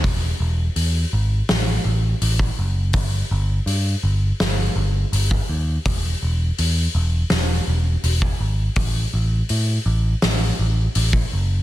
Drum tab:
HH |o---o---o---o---|o---o---o---o---|o---o---o---o---|o---o---o---o---|
SD |--------o-------|--------o-------|--------o-------|--------o-------|
BD |o------------o--|o------------o--|o------------o--|o------------o--|